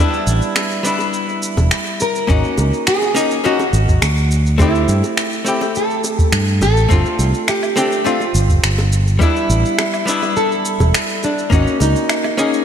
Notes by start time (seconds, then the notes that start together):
Already playing: G3 B3
0.00 D4 E4
0.14 shaker
0.27 A1, shaker
0.42 shaker
0.56 finger snap, high bongo, shaker
0.71 shaker
0.83 G3 B3 D4 E4, shaker
0.99 high bongo, shaker
1.13 shaker
1.29 shaker
1.43 shaker
1.57 E1, kick, high bongo, shaker
1.71 finger snap, shaker
1.86 shaker
2.00 A#4, high bongo, shaker
2.15 shaker
2.27 G#1 A#3 C#4 D#4 F#4, kick, shaker
2.44 shaker
2.58 C#2, high bongo, shaker
2.73 shaker
2.87 G#4, finger snap, shaker
3.02 high bongo, shaker
3.14 A#3 C#4 D#4 G#4, shaker
3.31 shaker
3.44 A#3 C#4 D#4 F#4, shaker
3.59 high bongo, shaker
3.73 G#1, shaker
3.88 kick, shaker
4.02 D2, finger snap, high bongo, shaker
4.18 shaker
4.31 shaker
4.46 shaker
4.58 A3 C4 E4 G4, kick, high bongo, shaker
4.75 shaker
4.88 G2, shaker
5.04 high bongo, shaker
5.17 finger snap, shaker
5.32 shaker
5.45 A3 C4 E4 G4, shaker
5.61 high bongo, shaker
5.75 A4, shaker
5.90 shaker
6.04 high bongo, shaker
6.18 G4, kick, shaker
6.32 G2, finger snap, shaker
6.48 shaker
6.61 A1 A4, high bongo, shaker
6.77 shaker
6.89 G1 A3 C4 D4 F4, kick, shaker
7.06 shaker
7.19 C2, high bongo, shaker
7.34 shaker
7.48 G4, finger snap, low woodblock, shaker
7.63 low woodblock, shaker
7.76 A3 C4 D4 G4, high bongo, shaker
7.92 shaker
8.04 A3 C4 D4 F4, shaker
8.20 high bongo, shaker
8.35 G1, shaker
8.49 kick, shaker
8.63 G1, finger snap, shaker
8.78 high bongo, shaker
8.92 shaker
9.08 shaker
9.19 G3 B3 D4 E4, kick, high bongo, shaker
9.36 shaker
9.49 A1, shaker
9.65 shaker
9.78 finger snap, high bongo, low woodblock, shaker
9.94 low woodblock, shaker
10.05 G3 B3 D4 E4, shaker
10.22 high bongo, low woodblock, shaker
10.36 A4, shaker
10.52 shaker
10.65 shaker
10.80 E1, kick, high bongo, shaker
10.94 finger snap, shaker
11.10 shaker
11.23 D4, high bongo, shaker
11.38 shaker
11.50 G#1 A#3 C#4 D#4 F#4, kick, shaker
11.67 shaker
11.80 C#2 D#4, high bongo, shaker
11.96 shaker
12.09 finger snap, low woodblock, shaker
12.24 high bongo, low woodblock, shaker
12.37 A#3 C#4 D#4 G#4, shaker
12.54 shaker